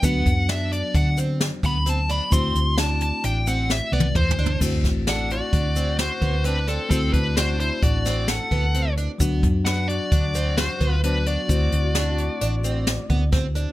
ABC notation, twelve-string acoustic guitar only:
X:1
M:5/4
L:1/8
Q:1/4=131
K:Dmix
V:1 name="Twelve-string acoustic guitar"
B,2 D2 D C2 B, C D | C2 D2 D C2 B, C D | C2 D2 D C2 B, C D | C2 D2 D C2 B, C D |
B,2 D2 D C2 B, C D | C2 D2 D C2 B, C D |]